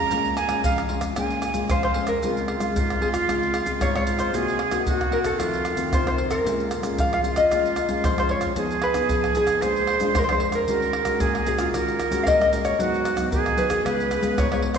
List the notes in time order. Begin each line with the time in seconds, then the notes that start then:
Already playing: C#4 F4 A#5
0.11 A#2 G#3 C#4 F4, pandeiro, shaker, surdo
0.25 pandeiro, shaker
0.37 G#5, pandeiro, tamborim, shaker
0.48 G#3 C#4 F4, pandeiro, tamborim, shaker, surdo
0.64 F2 F5, pandeiro, shaker, surdo
0.78 pandeiro, tamborim, shaker
0.88 G#3 C#4 F4, pandeiro
1.01 pandeiro, tamborim, shaker, surdo
1.16 A#2 G#3 C#4 F4 G#5, pandeiro, tamborim, shaker, surdo
1.30 pandeiro, shaker
1.42 pandeiro, tamborim, shaker
1.53 G#3 C#4 F4, pandeiro, shaker, surdo
1.70 F2 C5 F5, pandeiro, tamborim, shaker, surdo
1.83 C5, pandeiro, tamborim, shaker
1.94 G#3 C#4 F4, pandeiro
2.07 A#4, pandeiro, tamborim, shaker, surdo
2.23 C#3 G#3 C4 F4, pandeiro, shaker, surdo
2.37 pandeiro, shaker
2.48 pandeiro, tamborim
2.60 G#3 C4 F4, pandeiro, tamborim, shaker, surdo
2.75 G#2, pandeiro, shaker, surdo
2.90 pandeiro, tamborim, shaker
3.00 G#3 C4 F4 G#4, pandeiro
3.14 F4, pandeiro, tamborim, shaker, surdo
3.27 C#3 G#3 C4 F4, pandeiro, tamborim, shaker, surdo
3.43 pandeiro, shaker
3.54 pandeiro, tamborim, shaker
3.65 G#3 C4 F4, pandeiro, shaker, surdo
3.80 G#2 C#5, pandeiro, tamborim, shaker, surdo
3.94 G#3 C4 F4 C#5, pandeiro, tamborim, shaker
4.07 pandeiro, shaker
4.19 C5, pandeiro, tamborim, shaker, surdo
4.33 C3 A#3 D#4 F#4 G#4, pandeiro, shaker, surdo
4.48 pandeiro, shaker
4.59 pandeiro, tamborim
4.71 A#3 D#4 F#4, pandeiro, tamborim, shaker, surdo
4.86 C3 F#4, pandeiro, shaker, surdo
5.01 pandeiro, tamborim, shaker
5.11 A#3 D#4 F#4 A#4, pandeiro
5.24 A4, pandeiro, tamborim, shaker, surdo
5.38 F2 D#3 A3 C4 F4, pandeiro, tamborim, shaker, surdo
5.53 pandeiro, shaker
5.65 pandeiro, tamborim, shaker
5.76 D#3 A3 C4, pandeiro, shaker, surdo
5.91 C3 C5, pandeiro, tamborim, shaker, surdo
6.05 D#3 A3 C4 C5, pandeiro, tamborim, shaker
6.18 pandeiro
6.31 A#4, pandeiro, tamborim, shaker, surdo
6.44 A#2 G#3 C#4 F4, pandeiro, shaker, surdo
6.60 pandeiro, shaker
6.71 pandeiro, tamborim, shaker
6.75 A4
6.82 G#3 C#4 F4, pandeiro, tamborim, shaker, surdo
6.97 F2 F5, pandeiro, shaker, surdo
7.13 F5, pandeiro, tamborim, shaker
7.23 G#3 C#4 F4, pandeiro, shaker
7.36 D#5, pandeiro, tamborim, shaker, surdo
7.51 A#2 G#3 C#4 F4, pandeiro, tamborim, shaker, surdo
7.65 pandeiro, shaker
7.76 pandeiro, tamborim, shaker, surdo
7.88 G#3 C#4 F4, pandeiro, shaker, surdo
8.04 F2 C5, pandeiro, tamborim, shaker, surdo
8.17 G#3 C#4 F4 C5, pandeiro, tamborim, shaker
8.29 C#5, pandeiro
8.41 pandeiro, tamborim, shaker, surdo
8.56 F3 B3 D#4 G#4, pandeiro, shaker, surdo
8.71 pandeiro, shaker
8.82 B4, pandeiro, tamborim
8.94 B3 D#4 G#4, pandeiro, tamborim, shaker, surdo
9.09 F3, pandeiro, shaker, surdo
9.24 pandeiro, tamborim, shaker
9.35 B3 D#4 G#4, pandeiro, shaker
9.47 pandeiro, tamborim, shaker, surdo
9.62 A#2 G#3 D4 F4 C5, pandeiro, tamborim, shaker, surdo
9.76 pandeiro, shaker
9.87 pandeiro, tamborim, surdo
10.00 G#3 D4 F4, pandeiro, shaker, surdo
10.15 F2 A#4, pandeiro, tamborim, shaker, surdo
10.24 C5
10.29 G#3 D4 F4 C5, pandeiro, tamborim, shaker
10.40 pandeiro
10.52 A#4, pandeiro, tamborim, shaker, surdo
10.67 D#3 G#3 C#4 F#4 A#4, pandeiro, shaker, surdo
10.82 pandeiro, shaker
10.93 pandeiro, tamborim
11.05 G#3 C#4 F#4, pandeiro, tamborim, shaker, surdo
11.20 A#2 G#4, pandeiro, shaker, surdo
11.35 pandeiro, tamborim, shaker
11.46 G#3 C#4 F#4 G#4, pandeiro, shaker
11.59 F4, pandeiro, tamborim, shaker, surdo
11.73 D#3 G#3 C#4 F#4 A#4, pandeiro, tamborim, shaker, surdo
11.88 pandeiro, shaker
12.00 pandeiro, tamborim, shaker, surdo
12.10 G#3 C#4 F#4, pandeiro, shaker, surdo
12.23 A#2 F5, pandeiro, tamborim, shaker, surdo
12.28 D#5
12.39 G#3 C#4 D#5, pandeiro, tamborim, shaker
12.53 pandeiro, shaker
12.65 C#5, pandeiro, tamborim, shaker, surdo
12.78 G#2 F#3 B3 D#4 F#4, pandeiro, shaker, surdo
12.94 pandeiro, shaker
13.05 pandeiro, tamborim, shaker
13.16 F#3 B3 D#4, pandeiro, tamborim, shaker, surdo
13.31 D#3 G#4, pandeiro, shaker, surdo
13.46 pandeiro, tamborim, shaker
13.56 F#3 B3 D#4 B4, pandeiro, shaker
13.70 G#4, pandeiro, tamborim, shaker, surdo
13.84 C#3 G#3 B3 F4 B4, pandeiro, tamborim, shaker, surdo
14.00 pandeiro, shaker
14.11 pandeiro, tamborim, shaker, surdo
14.21 G#3 B3 F4, pandeiro, shaker, surdo
14.37 G#2 C#5, pandeiro, tamborim, shaker, surdo
14.51 G#3 B3 F4 C#5, pandeiro, tamborim, shaker
14.62 pandeiro
14.74 pandeiro, tamborim, shaker, surdo